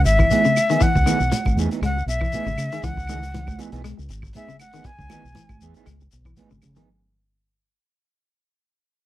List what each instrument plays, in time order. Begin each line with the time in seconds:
0.05 fingered electric bass G#1, flute E5, muted clean electric guitar stroke, closed hi-hat, high conga, shekere
0.19 clean electric guitar E3, kick, claves, shekere
0.31 clean electric guitar E3 B3 D#4 G#4, closed hi-hat, high conga, shekere
0.44 clean electric guitar C#3, muted clean electric guitar stroke, shekere
0.57 muted clean electric guitar stroke, closed hi-hat, claves, shekere
0.70 clean electric guitar D#3 B3 D#4 G#4, closed hi-hat, shekere
0.81 clean electric guitar E3, flute F#5, kick, closed hi-hat, high conga, shekere
0.96 fingered electric bass C#2, muted clean electric guitar stroke, kick, shekere
1.06 clean electric guitar D#3 E3 B3 D#4 G#4, closed hi-hat, high conga, claves, shekere
1.20 fingered electric bass B1, muted clean electric guitar stroke, shekere
1.32 muted clean electric guitar stroke, closed hi-hat, high conga, shekere
1.45 fingered electric bass G#1, muted clean electric guitar stroke, kick, high conga, claves, shekere
1.56 fingered electric bass E2, clean electric guitar E3 B3 D#4 G#4, closed hi-hat, high conga, shekere
1.71 clean electric guitar E3 B3 D#4, muted clean electric guitar stroke, closed hi-hat, shekere
1.82 fingered electric bass C#2, clean electric guitar G#3, flute F#5, closed hi-hat, high conga, claves, shekere
1.97 muted clean electric guitar stroke, shekere
2.06 fingered electric bass B1, flute E5, muted clean electric guitar stroke, closed hi-hat, high conga, shekere
2.21 clean electric guitar E3, kick, claves, shekere
2.32 clean electric guitar E3 B3 D#4 G#4, closed hi-hat, high conga, shekere
2.46 fingered electric bass G#1, clean electric guitar C#3, muted clean electric guitar stroke, high conga, shekere
2.58 fingered electric bass C#3, muted clean electric guitar stroke, closed hi-hat, claves, shekere
2.72 clean electric guitar D#3 D#4 G#4, closed hi-hat, shekere
2.84 fingered electric bass C#2, clean electric guitar E3, flute F#5, kick, closed hi-hat, shekere
2.97 muted clean electric guitar stroke, kick, shekere
3.07 clean electric guitar D#3 E3 D#4 G#4, muted clean electric guitar stroke, closed hi-hat, high conga, claves, shekere
3.22 muted clean electric guitar stroke, closed hi-hat, shekere
3.34 clean electric guitar E3, closed hi-hat, high conga, shekere
3.47 muted clean electric guitar stroke, kick, high conga, claves, shekere
3.58 clean electric guitar E3 B3 D#4 G#4, closed hi-hat, shekere
3.72 fingered electric bass B1, clean electric guitar E3 B3 D#4 G#4, closed hi-hat, shekere
3.84 clean electric guitar G#3, closed hi-hat, claves, shekere
3.97 fingered electric bass C#2, muted clean electric guitar stroke, shekere
4.09 fingered electric bass G#1, muted clean electric guitar stroke, closed hi-hat, high conga, shekere
4.22 kick, claves, shekere
4.33 clean electric guitar B3 D#4 G#4, flute E5, closed hi-hat, high conga, shekere
4.49 clean electric guitar C#3, high conga, shekere
4.59 flute F#5, muted clean electric guitar stroke, closed hi-hat, claves, shekere
4.73 clean electric guitar D#3 B3 D#4 G#4, closed hi-hat, shekere
4.84 flute G#5, muted clean electric guitar stroke, kick, closed hi-hat, shekere
4.99 fingered electric bass C#2, muted clean electric guitar stroke, kick, shekere
5.09 clean electric guitar D#3 E3 B3 D#4 G#4, closed hi-hat, high conga, claves, shekere
5.25 fingered electric bass B1, muted clean electric guitar stroke, shekere
5.35 clean electric guitar E3, closed hi-hat, high conga, shekere
5.49 fingered electric bass G#1, muted clean electric guitar stroke, kick, high conga, claves, shekere
5.60 fingered electric bass E2, clean electric guitar E3 B3 G#4, muted clean electric guitar stroke, closed hi-hat, shekere
5.74 clean electric guitar E3 B3 D#4 G#4, closed hi-hat, shekere
5.86 fingered electric bass C#2, clean electric guitar G#3, closed hi-hat, claves, shekere
6.00 muted clean electric guitar stroke, shekere
6.11 fingered electric bass B1, muted clean electric guitar stroke, closed hi-hat, high conga, shekere
6.25 clean electric guitar E3, kick, claves, shekere
6.36 clean electric guitar E3 B3 D#4 G#4, closed hi-hat, high conga, shekere
6.51 fingered electric bass G#1, clean electric guitar C#3, muted clean electric guitar stroke, high conga, shekere
6.62 fingered electric bass C#3, muted clean electric guitar stroke, closed hi-hat, low conga, claves, shekere
6.76 clean electric guitar D#3 B3 D#4 G#4, closed hi-hat, low conga, shekere